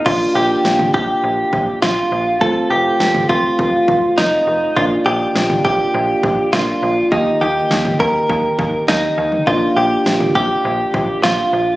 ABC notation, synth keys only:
X:1
M:4/4
L:1/8
Q:1/4=102
K:Bb
V:1 name="Synth keys"
[B,DF]8 | [A,CF]8 | [B,DF]6 [B,DF]2 | [B,EG]8 |
[B,DF]8 |]